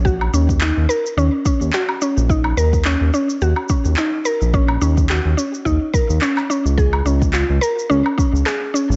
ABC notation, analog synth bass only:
X:1
M:4/4
L:1/16
Q:"Swing 16ths" 1/4=107
K:Ebm
V:1 name="Analog synth bass" clef=bass
B,,,2 E,,3 E,, z2 E,, z2 E,, z3 B,,,- | B,,,2 E,,3 E,, z2 E,, z2 E,, z3 B,,,- | B,,,2 E,,3 E,, z2 E,, z2 E,, z3 D,,- | D,,2 D,,3 D,, z2 D,, z2 D,, z3 A,,, |]